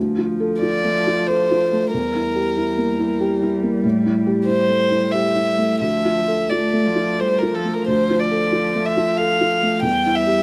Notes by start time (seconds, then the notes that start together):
Already playing: D2 F3
0.18 F4
0.40 A4
0.61 F4 D5
0.84 A3
1.07 F4
1.28 A4 C5
1.51 F4
1.73 A3
1.92 E2 G3 A#4
2.15 E4
2.35 G4
2.57 E4
2.78 A#3
2.99 E4
3.20 G4
3.42 E4
3.63 A#3
3.84 A2
4.05 E4
4.26 G4
4.46 E4 C5
4.69 A3
4.91 E4
5.11 G4 E5
5.35 E4
5.58 A3
5.81 D2 F3 E5
6.05 F4
6.28 A4
6.49 A3 F4 D5
6.73 A3
6.85 F3
6.96 F4
7.19 G3 A4 C5
7.38 F4 A#4
7.53 F3 A4
7.65 A3
7.73 A#4
7.87 D2 F3 C5
8.10 F4
8.20 D5
8.31 A4
8.52 F4
8.75 A3
8.85 E5
8.97 F4
9.18 A4 F5
9.41 F4
9.63 A3
9.82 E2 G3 G5
10.06 E4
10.16 E5
10.27 G4